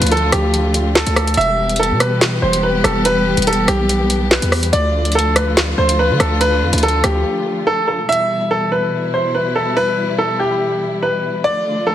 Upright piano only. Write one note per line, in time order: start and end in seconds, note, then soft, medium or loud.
0.12 0.31 A4 medium
0.32 0.92 G4 medium
0.95 1.15 A4 medium
1.16 1.36 A4 medium
1.37 1.77 E5 loud
1.79 1.99 A4 medium
2.00 2.40 B4 medium
2.42 2.62 C5 medium
2.63 2.83 B4 medium
2.84 3.04 A4 medium
3.05 3.45 B4 loud
3.47 3.67 A4 medium
3.68 4.27 G4 medium
4.31 4.71 B4 medium
4.73 5.12 D5 loud
5.15 5.35 A4 medium
5.36 5.75 B4 medium
5.78 5.98 C5 medium
5.99 6.19 B4 medium
6.20 6.40 A4 medium
6.41 6.80 B4 loud
6.83 7.03 A4 medium
7.04 7.63 G4 medium
7.67 7.86 A4 medium
7.88 8.07 A4 medium
8.09 8.48 E5 loud
8.51 8.70 A4 medium
8.72 9.11 B4 medium
9.14 9.33 C5 medium
9.35 9.54 B4 medium
9.55 9.75 A4 medium
9.77 10.16 B4 loud
10.18 10.38 A4 medium
10.39 10.99 G4 medium
11.03 11.42 B4 medium
11.44 11.84 D5 loud
11.87 11.95 A4 medium